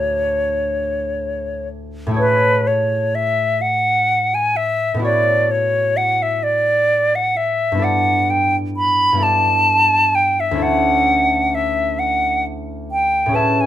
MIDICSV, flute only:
0, 0, Header, 1, 2, 480
1, 0, Start_track
1, 0, Tempo, 1020408
1, 1029, Time_signature, 6, 3, 24, 8
1, 1030, Tempo, 953895
1, 2470, Tempo, 928793
1, 5830, Tempo, 909091
1, 6944, End_track
2, 0, Start_track
2, 0, Title_t, "Flute"
2, 0, Program_c, 0, 73
2, 0, Note_on_c, 0, 73, 54
2, 791, Note_off_c, 0, 73, 0
2, 1028, Note_on_c, 0, 71, 87
2, 1273, Note_on_c, 0, 73, 69
2, 1281, Note_off_c, 0, 71, 0
2, 1513, Note_on_c, 0, 76, 80
2, 1521, Note_off_c, 0, 73, 0
2, 1747, Note_on_c, 0, 78, 86
2, 1755, Note_off_c, 0, 76, 0
2, 2114, Note_on_c, 0, 80, 76
2, 2122, Note_off_c, 0, 78, 0
2, 2225, Note_on_c, 0, 76, 79
2, 2233, Note_off_c, 0, 80, 0
2, 2462, Note_off_c, 0, 76, 0
2, 2465, Note_on_c, 0, 74, 81
2, 2708, Note_on_c, 0, 73, 74
2, 2715, Note_off_c, 0, 74, 0
2, 2944, Note_on_c, 0, 78, 80
2, 2952, Note_off_c, 0, 73, 0
2, 3076, Note_on_c, 0, 76, 71
2, 3084, Note_off_c, 0, 78, 0
2, 3184, Note_on_c, 0, 74, 81
2, 3192, Note_off_c, 0, 76, 0
2, 3557, Note_on_c, 0, 78, 73
2, 3564, Note_off_c, 0, 74, 0
2, 3667, Note_on_c, 0, 76, 73
2, 3675, Note_off_c, 0, 78, 0
2, 3912, Note_on_c, 0, 78, 81
2, 3919, Note_off_c, 0, 76, 0
2, 4150, Note_on_c, 0, 79, 77
2, 4157, Note_off_c, 0, 78, 0
2, 4282, Note_off_c, 0, 79, 0
2, 4390, Note_on_c, 0, 83, 87
2, 4629, Note_on_c, 0, 81, 87
2, 4637, Note_off_c, 0, 83, 0
2, 5105, Note_on_c, 0, 79, 78
2, 5113, Note_off_c, 0, 81, 0
2, 5235, Note_on_c, 0, 76, 72
2, 5243, Note_off_c, 0, 79, 0
2, 5351, Note_on_c, 0, 78, 88
2, 5359, Note_off_c, 0, 76, 0
2, 5827, Note_on_c, 0, 76, 77
2, 5835, Note_off_c, 0, 78, 0
2, 6062, Note_on_c, 0, 78, 76
2, 6070, Note_off_c, 0, 76, 0
2, 6303, Note_off_c, 0, 78, 0
2, 6548, Note_on_c, 0, 79, 82
2, 6781, Note_on_c, 0, 81, 78
2, 6789, Note_off_c, 0, 79, 0
2, 6915, Note_on_c, 0, 80, 76
2, 6923, Note_off_c, 0, 81, 0
2, 6944, Note_off_c, 0, 80, 0
2, 6944, End_track
0, 0, End_of_file